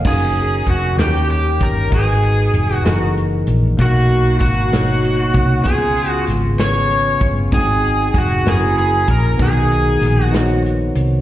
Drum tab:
CC |x-----|------|------|------|
HH |-xxxxx|xxxxxx|xxxxxx|xxxxxx|
SD |---o--|---o--|---o--|--oo--|
BD |o-o--o|o-----|o-o--o|o----o|

CC |------|------|
HH |xxxxxx|xxxxxx|
SD |---o--|--oo--|
BD |o-o--o|o-----|